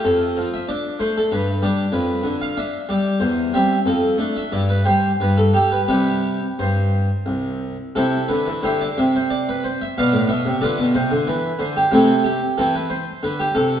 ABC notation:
X:1
M:3/4
L:1/16
Q:1/4=92
K:C
V:1 name="Harpsichord"
A3 e d2 c A B2 d2 | B3 f e2 d2 c2 e2 | A3 e d B c2 B A2 B | B4 c6 z2 |
[CEA]2 B2 [EGc] d e c d B c e | [Bdf]2 e2 [FBd]2 c2 B2 c G | [A,CE]2 G2 [CEA] B c2 B G A2 |]
V:2 name="Harpsichord" clef=bass
F,,2 F,2 D2 A,2 G,,2 [G,D]2 | F,,2 D,2 D2 G,2 E,,2 [G,C]2 | F,,2 [A,D]2 G,,2 [G,G]2 G,,2 [G,G]2 | [C,G,G]4 G,,4 C,,4 |
C,2 D, E, D,2 C,6 | B,, A,, B,, C, D, B,, C, D, E,2 D,2 | C,4 E,4 D,2 C,2 |]